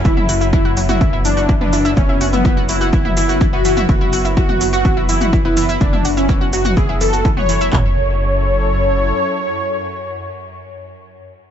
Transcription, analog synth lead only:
X:1
M:4/4
L:1/16
Q:1/4=125
K:F#m
V:1 name="Analog synth lead"
E3 z E2 z E2 z D2 z D2 z | C2 z B,2 z E2 E2 E2 z F2 z | F3 z F2 z F2 z E2 z E2 z | D2 z C2 z F2 G2 A2 z c2 z |
c16- | c16 |]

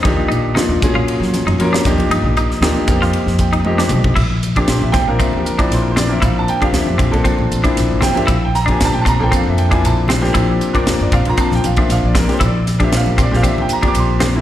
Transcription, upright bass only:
X:1
M:4/4
L:1/16
Q:"Swing 16ths" 1/4=117
K:Fmix
V:1 name="Upright bass" clef=bass
E,, z B,,,2 z E,, z B,,2 _G, z _G,, F,, z E,, z | G,, B,,,2 z D,, z F,,2 z F,,4- F,, _C,, z | [K:Bblyd] B,,,4 B,, B,,, B,, B,,, z D,,3 B,,,4 | B,,,2 z2 D,, F,, B,, B,,, z B,,, B,,, z B,,, G,,,2 z |
B,,,4 B,, B,,, B,, B,,, z F,,3 B,,,4 | B,,,2 z2 E,, G,, B,, B,,, z B,,, B,,, z B,,, B,,,2 z | B,,,4 B,, B,,, B,, B,,, z D,,3 B,,,4 |]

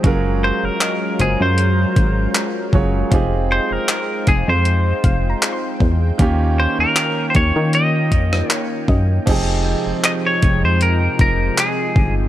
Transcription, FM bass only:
X:1
M:4/4
L:1/16
Q:"Swing 16ths" 1/4=78
K:Fm
V:1 name="FM bass" clef=bass
_G,,,3 G,,, z2 G,,, _G,,3 A,,,2 z2 G,,,2 | F,,,3 F,,, z2 F,,, F,,3 F,,,2 z2 =E,,2 | E,,3 E,, z2 E,, E,3 F,,2 z2 _G,,2 | F,,,3 F,,, z2 F,,, F,,3 F,,,2 z2 G,,,2 |]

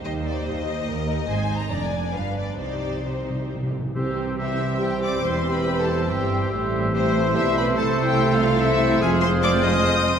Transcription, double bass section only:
X:1
M:3/4
L:1/8
Q:1/4=143
K:Cm
V:1 name="Double bass section" clef=bass
E,,2 E,,2 E,,2 | A,,,2 F,,,2 G,,,2 | C,,4- C,, z | [K:C] C,,6 |
E,,,4 G,,,2 | A,,,4 B,,,2 | C,,6 | [K:Fdor] F,,,6 |]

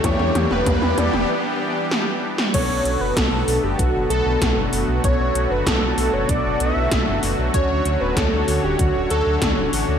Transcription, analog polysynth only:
X:1
M:4/4
L:1/8
Q:1/4=96
K:Bm
V:1 name="Analog polysynth"
[E,DEG]3 [E,DEG] z4 | [B,,B,DA]3 [B,,B,DA]4- [B,,B,DA] | [B,,B,DA]3 [B,,B,DA]4- [B,,B,DA] | [D,CDF]3 [D,CDF]4- [D,CDF] |]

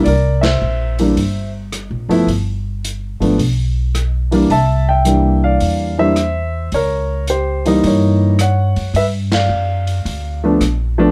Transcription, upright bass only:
X:1
M:4/4
L:1/8
Q:"Swing" 1/4=108
K:C
V:1 name="Upright bass" clef=bass
C,,2 _B,,,2 G,,,2- (3G,,, B,,, ^F,,, | G,,,3 _A,,, B,,,4 | C,,4 E,,4 | ^C,,4 G,,3 ^F,, |
G,,2 ^F,,2 D,,2 _B,,,2 |]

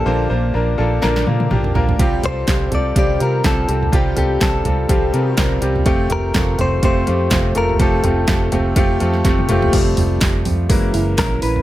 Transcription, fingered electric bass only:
X:1
M:4/4
L:1/8
Q:"Swing 16ths" 1/4=124
K:Fmix
V:1 name="Fingered electric bass" clef=bass
B,,, B,,, B,,, B,,, B,,, B,, B,,, B,,, | C,, C,, C,, C,, C,, C, C,, C,, | C,, C,, C,, C,, C,, C, C,, C,, | F,,, F,,, F,,, F,,, F,,, F,, F,,, F,,, |
F,,, F,,, F,,, F,,, F,,, F,, F,,, F,,, | F,,, F,,, F,,, F,, _G,,, G,,, B,,, B,,, |]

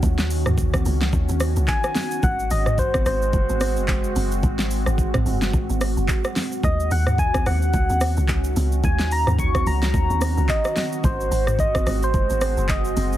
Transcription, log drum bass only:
X:1
M:4/4
L:1/16
Q:"Swing 16ths" 1/4=109
K:Ebdor
V:1 name="Log drum bass" clef=bass
E,,3 E,,3 D,,2 E,, E,,2 D,, z4 | A,,,2 A,,,4 A,,,2 G,,, A,,,2 G,,,3 G,,,2 | A,,,3 A,,,3 G,,,2 A,,, A,,,2 G,,, z4 | E,,2 E,,4 E,,2 D,, E,,2 D,,3 D,,2 |
E,,3 E,,3 D,,2 E,, E,,2 D,, z4 | A,,,2 A,,,4 A,,,2 G,,, A,,,2 G,,,3 G,,,2 |]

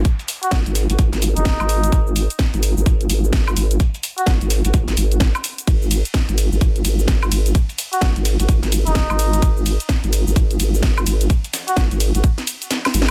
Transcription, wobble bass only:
X:1
M:4/4
L:1/16
Q:"Swing 16ths" 1/4=128
K:D#phr
V:1 name="Wobble bass" clef=bass
z4 G,,, G,,,2 G,,, G,,, G,,,2 F,,,2 G,,,3 | G,,,3 z2 G,,,2 G,,, G,,,2 G,,,2 G,,,2 G,,,2 | z4 G,,, G,,,2 G,,, A,,, G,,, G,,,3 z3 | G,,,3 z2 G,,,2 G,,, G,,,2 G,,,2 G,,,2 G,,,2 |
z4 G,,, G,,,2 G,,, G,,, G,,,2 F,,,2 G,,,3 | G,,,3 z2 G,,,2 G,,, G,,,2 G,,,2 G,,,2 G,,,2 | z4 G,,, G,,,2 G,,, z6 G,,,2 |]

